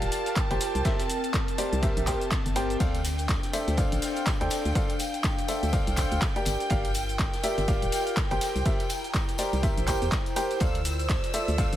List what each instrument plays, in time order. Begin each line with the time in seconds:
Already playing: ambient pad F4 A#4 G5, upright piano G4 A#4 D5 F5, violin section A5
0.02 fm bass D1, closed hi-hat, ride, shaker
0.12 open hi-hat, shaker
0.26 closed hi-hat, ride, shaker
0.36 kick, clap, closed hi-hat, ride, shaker
0.51 fm bass G1, upright piano G4 A#4 C5 G5, closed hi-hat
0.61 ambient pad C4, open hi-hat, ride, shaker
0.75 fm bass C2, closed hi-hat, shaker
0.85 upright piano G4 A#4 C5 E5, kick, snare, closed hi-hat, ride, shaker
0.99 snare, closed hi-hat, shaker
1.09 open hi-hat, ride, shaker
1.24 closed hi-hat, ride, shaker
1.34 kick, snare, clap, closed hi-hat, ride, shaker
1.46 ambient pad E5, closed hi-hat, shaker
1.58 upright piano G4 A#4 C5 D5, open hi-hat, ride, shaker
1.73 fm bass C2, closed hi-hat, shaker
1.83 upright piano G4 A#4 C5 E5, kick, closed hi-hat, ride, shaker
1.97 fm bass A#1, closed hi-hat, shaker
2.07 upright piano G4 A#4 C5 G5, kick, clap, open hi-hat, ride, shaker
2.21 closed hi-hat, shaker
2.31 kick, snare, clap, closed hi-hat, ride, shaker
2.46 fm bass G1, closed hi-hat, shaker
2.56 upright piano G4 A#4 C5 G5, open hi-hat, ride, shaker
2.70 closed hi-hat, shaker
2.80 fm bass D2, ambient pad D4, upright piano A4 C5 D5 F5, violin section G5, kick, closed hi-hat, ride, tambourine, shaker
2.93 ambient pad C5, closed hi-hat, tambourine
3.05 open hi-hat, ride, tambourine, shaker
3.18 closed hi-hat, tambourine, shaker
3.29 kick, snare, clap, closed hi-hat, ride, tambourine, shaker
3.43 snare, closed hi-hat, tambourine, shaker
3.53 upright piano A4 C5 D5 E5, open hi-hat, ride, tambourine, shaker
3.68 fm bass D2, closed hi-hat, ride, tambourine, shaker
3.77 upright piano A4 C5 D5 F5, kick, closed hi-hat, ride, tambourine, shaker
3.92 fm bass A1, closed hi-hat, tambourine, shaker
4.02 snare, open hi-hat, ride, tambourine, shaker
4.16 closed hi-hat, tambourine, shaker
4.23 ambient pad F5, kick, snare, clap, closed hi-hat, ride, shaker
4.27 tambourine
4.41 fm bass D2, upright piano A4 C5 D5 G5, closed hi-hat, tambourine
4.50 snare, open hi-hat, ride, tambourine, shaker
4.65 fm bass D2, closed hi-hat, tambourine, shaker
4.75 upright piano A4 C5 D5 F5, kick, closed hi-hat, ride, tambourine, shaker
4.90 closed hi-hat, tambourine
4.99 open hi-hat, ride, tambourine, shaker
5.14 closed hi-hat, tambourine, shaker
5.24 kick, snare, clap, closed hi-hat, ride, tambourine, shaker
5.38 closed hi-hat, tambourine, shaker
5.48 upright piano A4 C5 D5 E5, open hi-hat, ride, tambourine, shaker
5.63 fm bass D2, closed hi-hat, tambourine, shaker
5.73 upright piano A4 C5 D5 F5, kick, closed hi-hat, ride, tambourine, shaker
5.87 fm bass C2, closed hi-hat, tambourine, shaker
5.97 kick, clap, open hi-hat, ride, tambourine, shaker
6.11 fm bass D2, closed hi-hat, tambourine, shaker
6.21 kick, snare, clap, closed hi-hat, ride, tambourine, shaker
6.36 upright piano G4 A#4 D5 G5, closed hi-hat, tambourine
6.45 fm bass G1, ambient pad F4, open hi-hat, ride, tambourine, shaker
6.60 closed hi-hat, tambourine, shaker
6.70 fm bass G1, upright piano G4 A#4 D5 F5, ambient pad A#4, kick, closed hi-hat, ride, tambourine, shaker
6.84 closed hi-hat, tambourine
6.91 ambient pad G5, open hi-hat, ride, tambourine, shaker
7.09 closed hi-hat, tambourine, shaker
7.19 kick, snare, clap, closed hi-hat, ride, tambourine, shaker
7.34 snare, closed hi-hat, tambourine, shaker
7.43 upright piano G4 A#4 D5 E5, open hi-hat, ride, tambourine, shaker
7.58 fm bass G1, closed hi-hat, ride, tambourine, shaker
7.68 upright piano G4 A#4 D5 F5, kick, closed hi-hat, ride, tambourine, shaker
7.82 fm bass D1, closed hi-hat, tambourine, shaker
7.92 snare, open hi-hat, ride, tambourine, shaker
8.07 closed hi-hat, tambourine, shaker
8.16 kick, snare, clap, closed hi-hat, ride, tambourine, shaker
8.30 fm bass G1, upright piano G4 A#4 C5 G5, closed hi-hat, tambourine
8.41 ambient pad E4, snare, open hi-hat, ride, tambourine, shaker
8.56 fm bass C2, closed hi-hat, tambourine, shaker
8.65 upright piano G4 A#4 C5 E5, ambient pad A#5, kick, closed hi-hat, ride, tambourine, shaker
8.80 closed hi-hat, tambourine
8.89 ambient pad C5, open hi-hat, ride, tambourine, shaker
9.04 closed hi-hat, tambourine, shaker
9.14 kick, snare, clap, closed hi-hat, ride, tambourine, shaker
9.28 closed hi-hat, tambourine, shaker
9.38 upright piano G4 A#4 C5 D5, open hi-hat, ride, tambourine, shaker
9.53 fm bass C2, closed hi-hat, tambourine, shaker
9.63 upright piano G4 A#4 C5 E5, kick, closed hi-hat, ride, tambourine, shaker
9.77 fm bass A#1, closed hi-hat, tambourine, shaker
9.87 upright piano G4 A#4 C5 G5, kick, clap, open hi-hat, ride, tambourine, shaker
10.02 fm bass E2, closed hi-hat, tambourine, shaker
10.12 kick, snare, clap, closed hi-hat, ride, tambourine, shaker
10.26 closed hi-hat, tambourine
10.36 upright piano G4 A#4 C5 G5, open hi-hat, ride, tambourine, shaker
10.51 closed hi-hat, tambourine, shaker
10.60 fm bass D2, ambient pad F4, upright piano A4 C5 D5 F5, violin section E6, kick, closed hi-hat, ride, tambourine, shaker
10.74 closed hi-hat, tambourine
10.83 ambient pad D5, open hi-hat, ride, tambourine, shaker
10.99 closed hi-hat, tambourine, shaker
11.09 kick, snare, clap, closed hi-hat, ride, tambourine, shaker
11.24 snare, closed hi-hat, tambourine, shaker
11.33 upright piano A4 C5 D5 E5, open hi-hat, ride, tambourine, shaker
11.48 fm bass D2, closed hi-hat, ride, tambourine, shaker
11.58 upright piano A4 C5 D5 F5, kick, closed hi-hat, ride, tambourine, shaker
11.72 fm bass A1, closed hi-hat, tambourine, shaker